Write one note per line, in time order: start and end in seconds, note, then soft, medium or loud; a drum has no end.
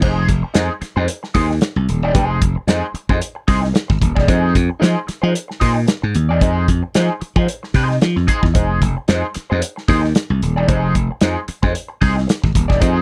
0.01 0.25 F1 loud
0.01 0.26 D#4 medium
0.01 0.27 G#4 medium
0.01 0.27 C5 medium
0.01 kick loud
0.01 crash medium
0.29 0.42 F1 medium
0.29 kick medium
0.29 closed hi-hat medium
0.43 muted clean electric guitar stroke medium
0.54 0.68 F2 medium
0.54 0.72 D#4 medium
0.54 0.72 G#4 loud
0.54 0.72 C5 medium
0.54 snare loud
0.54 closed hi-hat medium
0.81 muted clean electric guitar stroke soft
0.81 muted slap bass stroke medium
0.81 snare soft
0.81 closed hi-hat medium
0.96 1.07 F2 medium
0.96 1.07 D#4 medium
0.96 1.08 G#4 medium
0.96 1.07 C5 medium
1.08 muted clean electric guitar stroke soft
1.08 closed hi-hat loud
1.23 muted clean electric guitar stroke medium
1.23 snare soft
1.34 1.58 D#2 medium
1.34 1.52 D#4 medium
1.34 1.50 G#4 medium
1.34 1.49 C5 medium
1.34 kick medium
1.34 open hi-hat medium
1.50 muted clean electric guitar stroke soft
1.50 snare soft
1.61 muted clean electric guitar stroke soft
1.61 snare loud
1.61 closed hi-hat medium
1.76 1.87 C2 medium
1.76 muted clean electric guitar stroke soft
1.89 2.02 D#1 medium
1.89 closed hi-hat medium
2.02 2.13 E1 medium
2.02 2.13 D#4 medium
2.02 2.14 G#4 medium
2.02 2.15 D5 medium
2.14 2.38 F1 loud
2.14 2.25 D4 medium
2.14 2.40 G#4 medium
2.14 2.40 C5 medium
2.14 kick loud
2.14 closed hi-hat medium
2.25 2.39 D#4 medium
2.42 2.55 F1 medium
2.42 kick medium
2.42 closed hi-hat medium
2.56 muted clean electric guitar stroke soft
2.67 2.81 F2 medium
2.67 2.85 D#4 medium
2.67 2.85 G#4 medium
2.67 2.86 C5 medium
2.67 snare loud
2.67 closed hi-hat medium
2.94 muted slap bass stroke medium
2.94 muted clean electric guitar stroke soft
2.94 closed hi-hat medium
3.09 3.20 F2 medium
3.09 3.19 D#4 medium
3.09 3.20 G#4 medium
3.09 3.21 C5 medium
3.09 kick medium
3.20 muted clean electric guitar stroke soft
3.20 closed hi-hat loud
3.35 muted clean electric guitar stroke medium
3.48 3.71 C2 loud
3.48 3.65 D#4 medium
3.48 3.62 G#4 medium
3.48 3.61 C5 medium
3.48 kick medium
3.48 open hi-hat medium
3.62 muted clean electric guitar stroke medium
3.62 snare soft
3.73 muted clean electric guitar stroke soft
3.73 snare loud
3.73 closed hi-hat medium
3.88 4.00 G#1 loud
3.88 muted clean electric guitar stroke soft
3.88 kick medium
3.88 snare soft
4.02 4.15 D#1 loud
4.02 kick medium
4.02 closed hi-hat medium
4.15 4.27 E1 medium
4.15 4.27 D#4 medium
4.15 4.27 G#4 medium
4.15 4.29 D5 medium
4.15 kick medium
4.15 snare soft
4.28 4.52 F2 loud
4.28 4.53 D#4 medium
4.28 4.53 G#4 medium
4.28 4.53 C5 medium
4.28 kick loud
4.28 closed hi-hat medium
4.55 4.68 F2 medium
4.55 kick medium
4.55 closed hi-hat medium
4.70 muted clean electric guitar stroke medium
4.80 4.95 F3 medium
4.80 4.98 D#4 medium
4.80 4.98 G#4 loud
4.80 4.99 C5 loud
4.80 snare loud
4.80 closed hi-hat medium
5.07 muted clean electric guitar stroke soft
5.07 muted slap bass stroke soft
5.07 snare soft
5.07 closed hi-hat medium
5.22 5.34 F3 medium
5.22 5.33 D#4 medium
5.22 5.33 G#4 medium
5.22 5.33 C5 medium
5.34 muted clean electric guitar stroke soft
5.34 closed hi-hat loud
5.48 muted clean electric guitar stroke soft
5.48 snare soft
5.60 5.85 A#2 medium
5.60 5.78 D#4 medium
5.60 5.75 G#4 medium
5.60 5.73 C5 medium
5.60 kick medium
5.60 open hi-hat medium
5.74 muted clean electric guitar stroke soft
5.86 muted clean electric guitar stroke soft
5.86 snare loud
5.86 closed hi-hat medium
6.02 6.14 G#2 medium
6.02 muted clean electric guitar stroke soft
6.15 6.30 D#2 loud
6.15 closed hi-hat medium
6.29 6.42 E2 medium
6.29 6.40 D#4 medium
6.29 6.41 G#4 medium
6.29 6.42 D5 medium
6.41 6.65 F2 loud
6.41 6.66 D#4 medium
6.41 6.67 G#4 medium
6.41 6.67 C5 medium
6.41 kick loud
6.41 closed hi-hat medium
6.68 6.81 F2 medium
6.68 kick medium
6.68 closed hi-hat medium
6.83 muted clean electric guitar stroke medium
6.94 7.08 F3 medium
6.94 7.12 D#4 medium
6.94 7.12 G#4 medium
6.94 7.13 C5 medium
6.94 snare loud
6.94 closed hi-hat medium
7.21 muted clean electric guitar stroke soft
7.21 muted slap bass stroke medium
7.21 closed hi-hat medium
7.36 7.46 F3 medium
7.36 7.48 D#4 medium
7.36 7.47 G#4 medium
7.36 7.47 C5 medium
7.36 kick medium
7.48 muted clean electric guitar stroke soft
7.48 closed hi-hat loud
7.63 muted clean electric guitar stroke soft
7.63 snare soft
7.74 7.98 C3 medium
7.74 7.96 D#4 medium
7.74 7.90 G#4 medium
7.74 7.88 C5 medium
7.74 kick medium
7.74 open hi-hat medium
7.89 muted clean electric guitar stroke soft
7.89 snare soft
8.01 8.15 F3 loud
8.01 muted clean electric guitar stroke soft
8.01 snare loud
8.01 closed hi-hat medium
8.16 8.27 F2 medium
8.16 muted clean electric guitar stroke soft
8.16 snare soft
8.27 8.45 D#4 medium
8.27 8.42 G#4 medium
8.27 8.41 C5 loud
8.27 kick medium
8.27 closed hi-hat medium
8.42 8.57 E2 medium
8.42 muted clean electric guitar stroke soft
8.42 kick medium
8.42 snare soft
8.54 8.78 F1 loud
8.54 8.79 D#4 medium
8.54 8.80 G#4 medium
8.54 8.80 C5 medium
8.54 kick loud
8.54 closed hi-hat medium
8.82 8.95 F1 medium
8.82 kick medium
8.82 closed hi-hat medium
8.97 muted clean electric guitar stroke medium
9.08 9.22 F2 medium
9.08 9.25 D#4 medium
9.08 9.26 G#4 medium
9.08 9.26 C5 loud
9.08 snare loud
9.08 closed hi-hat medium
9.34 muted clean electric guitar stroke soft
9.34 muted slap bass stroke medium
9.34 snare soft
9.34 closed hi-hat medium
9.50 9.61 F2 medium
9.50 9.61 D#4 medium
9.50 9.61 G#4 medium
9.50 9.61 C5 medium
9.62 closed hi-hat loud
9.76 muted clean electric guitar stroke soft
9.76 snare soft
9.88 10.12 D#2 medium
9.88 10.05 D#4 medium
9.88 10.02 G#4 medium
9.88 10.01 C5 medium
9.88 kick medium
9.88 open hi-hat medium
10.02 muted clean electric guitar stroke soft
10.02 snare soft
10.15 muted clean electric guitar stroke soft
10.15 snare loud
10.15 closed hi-hat medium
10.30 10.40 C2 medium
10.30 muted clean electric guitar stroke medium
10.42 10.57 D#1 medium
10.42 closed hi-hat medium
10.56 10.67 E1 medium
10.56 10.67 D#4 medium
10.56 10.67 G#4 medium
10.56 10.68 D5 medium
10.68 10.92 F1 loud
10.68 10.93 D#4 medium
10.68 10.93 G#4 medium
10.68 10.93 C5 loud
10.68 kick loud
10.68 closed hi-hat medium
10.95 11.08 F1 medium
10.95 kick medium
10.95 closed hi-hat medium
11.11 muted clean electric guitar stroke soft
11.21 11.35 F2 medium
11.21 11.39 D#4 medium
11.21 11.39 G#4 medium
11.21 11.40 C5 medium
11.21 snare loud
11.21 closed hi-hat medium
11.48 muted clean electric guitar stroke soft
11.48 muted slap bass stroke medium
11.48 closed hi-hat medium
11.63 11.74 F2 loud
11.63 11.73 D#4 soft
11.63 11.73 G#4 medium
11.63 11.73 C5 medium
11.63 kick medium
11.74 muted clean electric guitar stroke soft
11.74 closed hi-hat loud
11.88 muted clean electric guitar stroke soft
12.01 12.25 C2 loud
12.01 12.18 D#4 medium
12.01 12.16 G#4 loud
12.01 12.15 C5 medium
12.01 kick medium
12.01 open hi-hat medium
12.17 muted clean electric guitar stroke soft
12.17 snare soft
12.27 muted clean electric guitar stroke medium
12.27 snare loud
12.27 closed hi-hat medium
12.42 12.54 G#1 medium
12.42 muted clean electric guitar stroke soft
12.42 kick medium
12.42 snare soft
12.55 12.68 D#1 medium
12.55 kick loud
12.55 closed hi-hat medium
12.68 12.81 E1 medium
12.68 12.78 D#4 medium
12.68 12.79 G#4 medium
12.68 12.81 D5 medium
12.68 kick medium
12.68 snare soft
12.79 13.02 F2 loud
12.79 13.02 D#4 medium
12.79 13.02 G#4 medium
12.79 13.02 C5 loud
12.79 kick loud
12.79 closed hi-hat medium